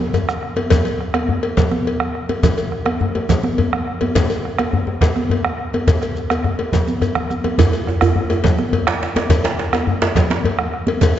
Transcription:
0.14 bombo rim, cowbell, djembe slap, djembe bass, shekere
0.29 bombo rim, djembe slap, shekere
0.43 bombo rim, djembe slap
0.56 bombo rim, cowbell, high conga, djembe tone
0.70 bombo low, cowbell, djembe slap, low conga, djembe bass, shekere
0.85 cowbell, high conga, shekere
1.01 bombo rim
1.14 bombo rim, cowbell, high conga
1.28 high conga, djembe bass
1.43 cowbell
1.57 bombo rim, bombo low, cowbell, djembe slap, low conga, shekere
1.71 bombo rim, high conga
1.87 cowbell
2.00 bombo rim
2.15 bombo rim, djembe slap
2.29 cowbell, djembe tone, high conga
2.43 bombo low, cowbell, djembe slap, djembe bass, low conga, shekere
2.58 cowbell, high conga, shekere
2.72 bombo rim
2.86 bombo rim, cowbell, high conga
3.00 high conga, djembe bass
3.15 cowbell, djembe tone
3.29 bombo rim, bombo low, cowbell, djembe slap, low conga, shekere
3.43 bombo rim, high conga
3.58 cowbell, djembe bass
3.73 bombo rim
3.87 bombo rim, djembe slap
4.01 cowbell, high conga, djembe tone
4.15 bombo low, cowbell, djembe slap, djembe bass, low conga, shekere
4.30 cowbell, high conga, shekere
4.45 bombo rim
4.58 bombo rim, cowbell, high conga
4.73 high conga, djembe bass
4.87 djembe tone
5.01 bombo rim, bombo low, cowbell, djembe slap, low conga, shekere
5.16 bombo rim, high conga
5.30 cowbell, djembe bass
5.45 bombo rim
5.59 djembe slap
5.74 cowbell, djembe tone, high conga
5.88 bombo rim, bombo low, cowbell, djembe slap, djembe bass, low conga, shekere
6.02 bombo rim, cowbell, shekere
6.16 djembe slap, high conga, shekere
6.30 bombo rim, cowbell, djembe slap, high conga, shekere
6.44 bombo rim, djembe slap, high conga, djembe bass
6.59 cowbell, high conga, djembe tone
6.72 bombo low, cowbell, djembe slap, high conga, low conga, shekere
6.88 high conga, shekere
7.01 bombo rim, cowbell, djembe slap, djembe bass, low conga, shekere
7.15 bombo rim, low conga
7.30 bombo rim, high conga, shekere
7.44 bombo rim, cowbell, djembe slap, djembe tone, high conga
7.58 bombo low, cowbell, djembe slap, low conga, djembe bass, shekere
7.73 cowbell, high conga, shekere
7.87 bombo rim, djembe tone
8.01 bombo rim, cowbell, high conga, djembe bass
8.16 high conga, djembe bass
8.30 cowbell, djembe tone
8.44 bombo rim, bombo low, cowbell, djembe slap, low conga, shekere
8.59 bombo rim, high conga
8.73 cowbell, djembe bass
8.87 bombo rim, djembe slap
9.01 bombo rim, djembe slap
9.16 cowbell, djembe slap, djembe tone, high conga
9.29 bombo low, cowbell, djembe slap, djembe bass, low conga, shekere
9.44 cowbell, djembe slap, high conga, shekere
9.59 bombo rim, djembe slap
9.73 bombo rim, cowbell, djembe slap, high conga
9.87 high conga, djembe bass
10.02 cowbell, djembe slap, djembe tone
10.15 bombo rim, bombo low, cowbell, djembe slap, low conga, shekere
10.30 djembe slap, high conga
10.44 cowbell, djembe bass
10.59 bombo rim
10.73 bombo rim, djembe slap
10.87 cowbell, high conga, djembe tone
11.01 bombo low, cowbell, djembe slap, low conga, djembe bass, shekere
11.15 high conga

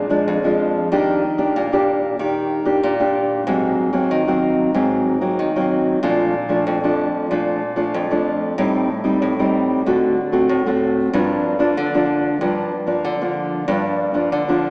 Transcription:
Already playing: A#2
0.09 F3 G#3 D4
0.28 F2
0.44 F3 G#3 D4
0.92 D#3 A#3 D4 G4
1.38 A#3 D4 G4
1.56 A#2
1.72 A#3 D4 G4
2.19 D#3 A#3 D4 G4
2.65 A#3 D4 G4
2.83 A#2
3.00 A#3 D4 G4
3.47 G#2 F#3 A#3 C4
3.93 F#3 A#3 C4
4.11 D#3
4.27 F#3 A#3 C4
4.74 G#2 F#3 A#3 C4
5.21 F#3 A#3 C4
5.39 D#3
5.56 F#3 A#3 C4
6.03 A#2 F3 A3 D4
6.49 F3 A3 D4
6.67 F2
6.84 F3 A3 D4
7.31 A#2 F3 A3 D4
7.76 F3 A3 D4
7.94 F2
8.11 F3 A3 D4
8.58 A2 G3 C4 D#4
9.04 G3 C4 D#4
9.22 A2
9.39 G3 C4 D#4
9.86 D3 A3 C4 F#4
10.32 A3 C4 F#4
10.49 A2
10.66 A3 C4 F#4
11.13 G2 F3 A#3 D4
11.59 F3 A#3 D4
11.77 D3
11.94 F3 A#3 D4
12.41 G2 F3 A#3 D4
12.87 F3 A#3 D4
13.05 D3
13.21 F3 A#3 D4
13.68 G2 F3 A#3 D4
14.14 F3 A#3 D4
14.32 D3
14.49 F3 A#3 D4

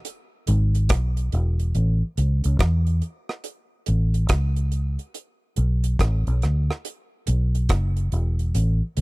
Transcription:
0.05 closed hi-hat
0.47 G#1, closed hi-hat
0.75 closed hi-hat
0.89 B1, kick, cross-stick, closed hi-hat
1.17 closed hi-hat
1.32 E1, closed hi-hat
1.59 closed hi-hat
1.75 A1, closed hi-hat
2.17 C#2, closed hi-hat
2.44 C#2, closed hi-hat
2.59 E2, kick, cross-stick, closed hi-hat
2.87 closed hi-hat
3.02 closed hi-hat
3.29 cross-stick
3.44 closed hi-hat
3.86 A1, closed hi-hat
4.14 closed hi-hat
4.29 C#2, kick, cross-stick, closed hi-hat
4.56 closed hi-hat
4.72 closed hi-hat
4.99 closed hi-hat
5.14 closed hi-hat
5.56 B1, closed hi-hat
5.84 closed hi-hat
5.99 A1, kick, cross-stick, closed hi-hat
6.27 B1, closed hi-hat
6.42 D2, cross-stick, closed hi-hat
6.71 cross-stick
6.85 closed hi-hat
7.27 B1, closed hi-hat
7.55 closed hi-hat
7.69 F#1, kick, cross-stick, closed hi-hat
7.97 closed hi-hat
8.12 E1, closed hi-hat
8.39 closed hi-hat
8.55 A1, closed hi-hat
8.97 C#2, closed hi-hat

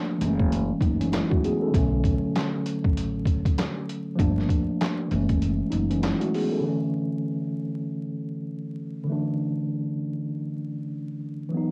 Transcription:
Already playing: F3 A3 A#3 D4
0.18 F#1 E3 G#3, closed hi-hat
0.23 A3 C#4
0.39 kick
0.52 closed hi-hat
0.80 F#1 F#3 D#4, kick, closed hi-hat
1.00 E3 C#4, closed hi-hat
1.12 G#3 E4, snare, clap, closed hi-hat
1.30 A3 F#4, kick
1.44 B3 G#4, closed hi-hat
1.62 C#4 A4
1.71 B1 D3 F#3, kick, closed hi-hat
1.76 A3 C#4
2.04 kick, closed hi-hat
2.36 snare, clap, closed hi-hat
2.66 closed hi-hat
2.84 A1, kick
2.97 closed hi-hat
3.26 kick, closed hi-hat
3.45 kick, closed hi-hat
3.58 snare, clap, closed hi-hat
3.89 closed hi-hat
4.16 G1 F3 A3 A#3, kick
4.20 D4, closed hi-hat
4.38 snare
4.49 kick, closed hi-hat
4.81 snare, clap, closed hi-hat
5.08 F#1 E3 G#3, closed hi-hat
5.13 A3 C#4
5.29 kick, closed hi-hat
5.42 closed hi-hat
5.70 F#1 F#3 D#4, closed hi-hat
5.90 E3 C#4, closed hi-hat
6.02 G#3 E4, snare, clap, closed hi-hat
6.20 A3 F#4, closed hi-hat
6.34 B3 G#4, open hi-hat
6.52 C#4 A4
6.60 D3 E3
6.65 A3 C#4
9.04 D3 E3
9.09 A3 D4
11.49 E3 F#3
11.54 B3 D#4

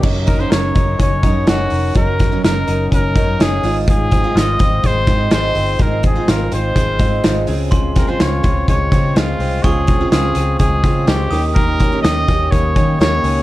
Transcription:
Already playing: A#3 C#4
0.03 F#1 F#3 C#4 D#4 A#4, kick, crash
0.26 D#4 A#4, kick, closed hi-hat
0.40 F#3 C#4 D#4 A#4 C5
0.50 F#1 A#4 C#5, snare, closed hi-hat
0.75 F#1 F#3 C#4 D#4 A#4, kick, closed hi-hat
0.99 F#1 C#4 C#5, kick, closed hi-hat
1.23 F#2 F#3 C#4 D#4 A#4, kick, closed hi-hat
1.47 F#1 F#3 C#4 D#4 F#4 A#4, snare, closed hi-hat
1.70 F1 D#4, open hi-hat
1.95 F#1 F#3 C#4 D#4 A#4, kick, closed hi-hat
2.19 D#4, kick, snare, closed hi-hat
2.31 F#3 C#4 D#4 A#4
2.44 F#1 A#4, snare, closed hi-hat
2.67 F#1 F#3 C#4 D#4 A#4, closed hi-hat
2.91 F#1 C#4 A#4, kick, closed hi-hat
3.16 F#2 F#3 C#4 D#4 A#4, kick, closed hi-hat
3.39 F#1 F#3 C#4 D#4 G#4 A#4, snare, closed hi-hat
3.63 G#1 G#2 G#3 D#4 F4 C5, open hi-hat
3.88 G#2 G#4, kick, closed hi-hat
4.12 C4, kick, closed hi-hat
4.24 G#3 D#4 F4 C5
4.35 G#1 F4 D#5, snare, closed hi-hat
4.59 G#1 G#3 C4 D#4 F4 C5, kick, closed hi-hat
4.83 G#1 G#3 C5, kick, closed hi-hat
5.07 G#2 G#3 C4 D#4 F4 C5, kick, closed hi-hat
5.30 G#1 G#3 D#4 F4 C5, snare, closed hi-hat
5.55 G1 C4, open hi-hat
5.79 G#1 G#2 G#3 D#4 F4 A#4 C5, kick, closed hi-hat
6.03 C4 G#4, kick, closed hi-hat
6.15 G#3 D#4 F4 C5
6.28 G#1 F4 A#4, snare, closed hi-hat
6.51 G#1 G#3 C4 D#4 F4 C5, closed hi-hat
6.75 G#1 G#3, kick, closed hi-hat
6.99 G#2 G#3 C4 D#4 F4 C5, kick, closed hi-hat
7.24 G#1 G#3 D#4 F4 C5, snare, closed hi-hat
7.47 C#2 C#3 G#3 C4 F4 G#4, open hi-hat
7.71 C#3 C6, kick, closed hi-hat
7.96 C4 A#4, kick, snare, closed hi-hat
8.07 C#3 G#3 C4 F4 G#4 C5
8.20 C#2 F4 C#5, snare, closed hi-hat
8.43 C#2 G#3 C4 F4 G#4, kick, closed hi-hat
8.68 C#2 G#3 C#5, kick, closed hi-hat
8.92 C#3 G#3 C4 F4 G#4, kick, closed hi-hat
9.16 C#2 G#3 C4 F4 G#4, snare, closed hi-hat
9.39 C2 C4, open hi-hat
9.63 C#2 C#3 G#3 C4 F4 G#4 C#6, kick, closed hi-hat
9.87 C4, kick, closed hi-hat
10.01 C#3 G#3 C4 F4 G#4
10.11 C#2 F4 G#4, snare, closed hi-hat
10.35 C#2 G#3 C4 F4, closed hi-hat
10.39 G#4
10.59 C#2 G#3 G#4, kick, closed hi-hat
10.84 C#3 G#3 C4 F4 G#4, kick, closed hi-hat
11.07 C#2 G#3 C4 F4 G4 G#4, snare, closed hi-hat
11.31 D#2 D#3 A#3 C#4 G4 D#6, open hi-hat
11.54 D#3 A#4, kick, closed hi-hat
11.80 C#4, kick, closed hi-hat
11.92 D#3 A#3 C#4 G4
12.02 D#2 G4 D#5, snare, closed hi-hat
12.28 D#2 D#3 A#3 C#4 G4, kick, closed hi-hat
12.51 D#2 A#3 C#5, kick, closed hi-hat
12.76 D#3 A#3 C#4 G4, kick, closed hi-hat
12.99 D#2 D#3 A#3 C#4 G4 C#5, snare, closed hi-hat
13.23 C#2 C#4, open hi-hat

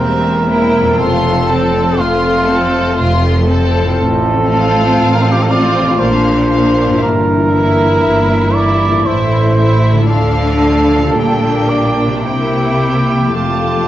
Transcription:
Already playing: E1 E2 A#3 C4 A#4 C5
0.00 E2 G3 E5
0.48 A#3 E4 G5
0.80 F2
0.85 C4
0.89 A4
0.93 A3 C5
0.99 F1 F2 A3 F4 A4 C6
1.47 C4 A4 A5
1.99 F1 F2 A3 F4 C6
2.48 C4 A4 A5
2.98 F1 F2 A3 F4 C6
3.48 C4 A4 A5
3.80 A2
3.85 C4
3.89 F4
3.94 A4 C5
3.98 A1 A2 F3 C4
4.48 C4 F4 F5
4.98 A1 A2
5.14 A#4
5.23 A4
5.32 G4
5.43 A4
5.48 C4 F4 D5 F5
5.82 A#2
5.86 A#3
5.91 F4
5.95 A#3 C5 D5
6.00 A#1 A#2 D4 F5
6.51 A#3 D4 F5
6.85 G2 A#3
6.93 E4
6.98 G1 E5
7.03 G2 E3 E4 A#4
7.53 A#3 E4 E5
8.04 G1 G2
8.54 A#3 D5 E5
8.58 E4
8.90 A2 A3
8.98 E4
9.03 A1 C5 E5
9.07 A2 A3 E4 E5
9.59 A3 E4 E5
9.92 D3
9.98 A3
10.02 F4
10.06 D2 A4 D5
10.11 D3 F3 A3 D4 F5
10.97 A#2
11.02 A#3
11.06 G4
11.11 A#1 G3 D4 D5
11.16 A#2 A#3 D4 G5
11.69 D5
12.06 C3
12.11 A#3
12.15 G4
12.20 E4 E5
12.24 C2 C3 A#3 E4 G4 G5
13.19 F3
13.24 A3
13.28 A4
13.33 F1 A3 F4 G4 F5 A5
13.37 F2 F4

